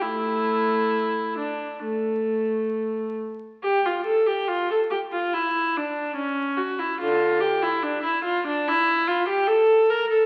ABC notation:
X:1
M:4/4
L:1/16
Q:1/4=70
K:Aphr
V:1 name="Viola"
[A,E]6 D2 A,6 z2 | G F A G F A G F E2 D2 ^C2 ^F E | [D,F]2 G E D E F D E2 F G A2 B A |]